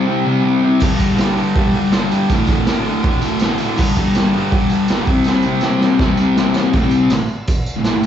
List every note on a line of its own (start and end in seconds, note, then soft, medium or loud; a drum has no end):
0.06 0.24 C3 loud
0.06 0.25 G3 loud
0.06 0.25 C4 loud
0.25 0.42 C3 medium
0.25 0.42 G3 medium
0.25 0.43 C4 loud
0.43 0.61 C3 loud
0.43 0.61 G3 loud
0.43 0.62 C4 loud
0.62 0.80 C3 medium
0.62 0.80 G3 medium
0.62 0.81 C4 loud
0.80 0.96 G2 loud
0.80 0.97 D3 loud
0.80 0.98 G3 loud
0.80 kick loud
0.80 crash loud
0.80 tambourine medium
0.97 1.14 G2 medium
0.97 1.15 D3 medium
0.97 1.15 G3 medium
0.97 kick medium
0.97 open hi-hat medium
0.97 tambourine medium
1.15 1.35 G2 loud
1.15 1.35 D3 loud
1.15 1.37 G3 loud
1.15 snare loud
1.15 tambourine medium
1.19 open hi-hat medium
1.36 1.55 G2 medium
1.36 1.56 D3 medium
1.36 1.56 G3 medium
1.36 open hi-hat medium
1.36 tambourine soft
1.56 1.73 G2 medium
1.56 1.74 D3 loud
1.56 1.75 G3 loud
1.56 kick loud
1.56 open hi-hat medium
1.74 1.92 G2 medium
1.74 1.93 D3 loud
1.74 1.94 G3 loud
1.74 open hi-hat medium
1.92 2.11 G2 loud
1.92 2.12 D3 loud
1.92 2.12 G3 loud
1.92 snare loud
1.92 open hi-hat loud
1.92 tambourine loud
2.11 2.29 G2 medium
2.11 2.30 D3 medium
2.11 2.29 G3 medium
2.11 open hi-hat medium
2.11 tambourine medium
2.29 2.47 D2 medium
2.29 2.48 A2 loud
2.29 2.49 D3 loud
2.29 kick loud
2.29 open hi-hat medium
2.29 tambourine medium
2.47 2.67 D2 medium
2.47 2.68 A2 loud
2.47 2.69 D3 medium
2.47 kick medium
2.47 open hi-hat medium
2.47 tambourine medium
2.67 2.84 D2 loud
2.67 2.84 A2 loud
2.67 2.85 D3 loud
2.67 snare loud
2.67 open hi-hat medium
2.67 tambourine medium
2.85 3.01 D2 medium
2.85 3.03 A2 medium
2.85 3.03 D3 loud
2.85 open hi-hat medium
3.03 3.20 D2 loud
3.03 3.21 A2 loud
3.03 3.22 D3 loud
3.03 kick loud
3.03 open hi-hat medium
3.21 3.40 D2 medium
3.21 3.41 A2 medium
3.21 3.42 D3 loud
3.21 open hi-hat medium
3.21 tambourine medium
3.39 3.59 D2 loud
3.39 3.61 A2 loud
3.39 snare loud
3.39 open hi-hat medium
3.39 tambourine loud
3.44 3.61 D3 loud
3.58 3.77 D2 medium
3.58 3.77 A2 loud
3.58 3.77 D3 loud
3.58 open hi-hat medium
3.58 tambourine medium
3.77 3.96 G2 medium
3.77 3.97 D3 loud
3.77 3.97 G3 loud
3.77 kick loud
3.77 crash loud
3.77 tambourine medium
3.96 4.14 G2 medium
3.96 4.16 D3 medium
3.96 4.17 G3 loud
3.96 kick medium
3.96 open hi-hat medium
3.96 tambourine medium
4.15 4.33 G2 medium
4.15 4.34 D3 loud
4.15 4.36 G3 loud
4.15 snare loud
4.15 open hi-hat medium
4.15 tambourine medium
4.34 4.52 G2 loud
4.34 4.53 D3 medium
4.34 4.53 G3 medium
4.34 open hi-hat medium
4.34 tambourine soft
4.52 4.69 G2 loud
4.52 4.70 D3 loud
4.52 4.71 G3 loud
4.52 kick loud
4.52 open hi-hat loud
4.70 4.88 G2 medium
4.70 4.89 D3 medium
4.70 4.89 G3 loud
4.70 open hi-hat medium
4.70 tambourine medium
4.88 5.06 G2 loud
4.88 5.07 D3 loud
4.88 5.07 G3 loud
4.88 snare loud
4.88 open hi-hat medium
4.88 tambourine medium
5.07 5.25 C3 loud
5.07 5.26 G3 loud
5.07 5.27 C4 loud
5.07 kick loud
5.07 open hi-hat medium
5.24 5.44 C3 loud
5.24 5.45 G3 loud
5.24 5.46 C4 loud
5.24 snare medium
5.24 tambourine medium
5.42 5.61 C3 loud
5.42 tambourine medium
5.47 5.62 G3 loud
5.47 5.63 C4 loud
5.61 5.81 C3 loud
5.61 5.81 G3 loud
5.61 5.82 C4 loud
5.61 snare medium
5.61 tambourine medium
5.81 5.99 C3 loud
5.81 6.01 G3 medium
5.81 6.01 C4 medium
5.81 snare medium
5.81 tambourine soft
5.99 6.18 C3 loud
5.99 6.19 G3 loud
5.99 6.19 C4 loud
5.99 kick loud
5.99 snare loud
5.99 tambourine soft
6.17 6.36 C3 medium
6.17 6.38 G3 medium
6.17 6.38 C4 medium
6.17 tambourine medium
6.37 6.55 C3 loud
6.37 6.56 G3 loud
6.37 6.56 C4 loud
6.37 snare loud
6.37 tambourine medium
6.54 6.73 C3 medium
6.54 6.73 G3 medium
6.54 6.74 C4 medium
6.54 snare loud
6.54 tambourine medium
6.73 6.82 D2 loud
6.73 6.82 A2 loud
6.73 kick loud
6.73 tambourine soft
6.73 crash medium
6.82 7.10 C3 medium
6.82 7.10 G3 medium
6.82 7.10 C4 medium
6.91 tambourine medium
7.10 7.17 D2 medium
7.10 7.20 A2 medium
7.10 snare loud
7.10 tambourine medium
7.10 crash medium
7.19 muted distorted electric guitar stroke medium
7.28 tambourine soft
7.47 kick loud
7.47 tambourine medium
7.47 crash medium
7.66 tambourine medium
7.76 7.85 D2 medium
7.76 7.84 A2 medium
7.84 7.94 A2 medium
7.84 7.94 E3 loud
7.84 snare loud
7.84 tambourine loud
7.84 crash medium
7.96 8.02 D2 medium
7.96 8.02 A2 medium
8.03 8.06 D2 loud
8.03 8.06 A2 loud
8.03 tambourine medium